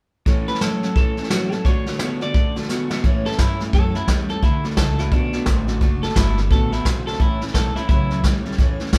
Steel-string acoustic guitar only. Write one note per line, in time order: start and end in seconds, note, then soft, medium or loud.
0.26 0.48 A2 medium
0.26 0.48 E3 medium
0.26 0.48 A3 medium
0.26 0.48 C#4 medium
0.26 0.47 A4 loud
0.48 0.61 A3 soft
0.48 0.61 C#4 soft
0.48 0.61 A4 medium
0.61 0.83 A2 medium
0.61 0.83 E3 medium
0.61 0.83 A3 medium
0.61 0.83 C#4 medium
0.61 0.82 A4 loud
0.83 0.95 A3 soft
0.83 0.96 C#4 soft
0.83 0.96 A4 soft
0.96 1.17 E3 medium
0.96 1.18 A3 medium
0.96 1.18 C#4 medium
0.96 1.17 A4 medium
1.18 1.31 A3 soft
1.18 1.31 C#4 soft
1.18 1.31 A4 medium
1.32 1.53 A2 medium
1.32 1.53 E3 medium
1.32 1.53 A3 medium
1.32 1.52 C#4 medium
1.32 1.51 A4 medium
1.52 1.65 A3 soft
1.52 1.66 C#4 soft
1.52 1.65 A4 medium
1.66 1.87 D3 medium
1.66 1.87 A3 medium
1.66 1.87 D4 medium
1.66 1.85 F#4 medium
1.87 2.00 A3 soft
1.87 1.99 D4 medium
1.87 2.00 F#4 medium
2.00 2.22 D3 medium
2.00 2.22 A3 medium
2.00 2.21 D4 medium
2.00 2.20 F#4 medium
2.21 2.34 A3 soft
2.21 2.34 D4 soft
2.21 2.35 F#4 soft
2.34 2.56 D3 medium
2.34 2.56 A3 medium
2.34 2.56 D4 medium
2.34 2.54 F#4 medium
2.56 2.69 A3 soft
2.56 2.69 D4 soft
2.56 2.69 F#4 medium
2.69 2.91 D3 medium
2.69 2.91 A3 medium
2.69 2.90 D4 loud
2.69 2.89 F#4 loud
2.90 3.03 A3 soft
2.90 3.04 D4 soft
2.90 3.04 F#4 medium
3.04 3.26 A2 medium
3.04 3.26 E3 medium
3.04 3.26 A3 medium
3.04 3.26 C#4 medium
3.04 3.24 E4 loud
3.25 3.38 A3 soft
3.25 3.39 C#4 soft
3.25 3.39 E4 soft
3.39 3.60 E3 medium
3.39 3.61 A3 medium
3.39 3.60 C#4 medium
3.39 3.59 E4 medium
3.60 3.74 A3 soft
3.60 3.74 C#4 soft
3.60 3.74 E4 medium
3.75 3.96 A2 medium
3.75 3.96 E3 medium
3.75 3.96 A3 medium
3.75 3.96 C#4 medium
3.75 3.94 E4 medium
3.95 4.08 A3 soft
3.95 4.09 C#4 soft
3.95 4.09 E4 medium
4.08 4.30 E3 medium
4.08 4.30 A3 medium
4.08 4.29 C#4 medium
4.08 4.28 E4 medium
4.29 4.42 A3 soft
4.29 4.43 C#4 medium
4.29 4.43 E4 medium
4.43 4.64 D3 medium
4.43 4.65 A3 medium
4.43 4.64 D4 medium
4.43 4.63 F#4 medium
4.64 4.77 A3 soft
4.64 4.78 D4 medium
4.64 4.77 F#4 medium
4.77 4.99 D3 medium
4.77 4.99 A3 medium
4.77 4.99 D4 medium
4.77 4.98 F#4 medium
4.99 5.11 A3 soft
4.99 5.12 D4 soft
4.99 5.12 F#4 medium
5.12 5.34 D3 medium
5.12 5.34 A3 medium
5.12 5.34 D4 medium
5.12 5.33 F#4 medium
5.34 5.46 A3 soft
5.34 5.47 D4 soft
5.34 5.47 F#4 medium
5.47 5.68 D3 medium
5.47 5.69 A3 medium
5.47 5.68 D4 medium
5.47 5.67 F#4 medium
5.68 5.81 A3 soft
5.68 5.81 D4 medium
5.68 5.82 F#4 medium
5.82 6.03 D3 medium
5.82 6.04 A3 medium
5.82 6.03 D4 loud
5.82 6.02 F#4 medium
6.03 6.16 A3 medium
6.03 6.17 D4 medium
6.03 6.16 F#4 medium
6.16 6.38 D3 medium
6.16 6.38 A3 medium
6.16 6.38 D4 medium
6.16 6.37 F#4 medium
6.38 6.51 A3 soft
6.38 6.52 D4 soft
6.38 6.51 F#4 soft
6.51 6.73 D3 medium
6.51 6.73 A3 medium
6.51 6.73 D4 medium
6.51 6.72 F#4 medium
6.73 6.85 A3 soft
6.73 6.86 D4 medium
6.73 6.86 F#4 soft
6.86 7.07 D3 medium
6.86 7.07 A3 medium
6.86 7.07 D4 medium
6.86 7.06 F#4 medium
7.07 7.20 A3 soft
7.07 7.21 D4 medium
7.07 7.21 F#4 medium
7.20 7.42 A2 medium
7.20 7.42 E3 medium
7.20 7.42 A3 medium
7.20 7.42 C#4 medium
7.20 7.41 E4 medium
7.42 7.55 A3 soft
7.42 7.56 C#4 medium
7.42 7.55 E4 medium
7.55 7.77 E3 medium
7.55 7.77 A3 medium
7.55 7.76 C#4 medium
7.55 7.75 E4 medium
7.76 7.90 A3 soft
7.76 7.90 C#4 soft
7.76 7.90 E4 soft
7.90 8.11 A2 medium
7.90 8.11 E3 medium
7.90 8.12 A3 medium
7.90 8.11 C#4 medium
7.90 8.10 E4 medium
8.11 8.24 A3 soft
8.11 8.25 C#4 soft
8.11 8.24 E4 soft
8.24 8.46 E3 medium
8.24 8.46 A3 medium
8.24 8.46 C#4 medium
8.24 8.45 E4 medium
8.46 8.58 A3 soft
8.46 8.59 C#4 medium
8.46 8.59 E4 medium
8.59 8.80 A2 medium
8.59 8.80 E3 medium
8.59 8.81 A3 medium
8.59 8.80 C#4 loud
8.59 8.79 E4 medium
8.80 8.93 A3 soft
8.80 8.94 C#4 medium
8.80 8.93 E4 medium
8.93 8.98 E3 medium
8.93 8.98 A3 medium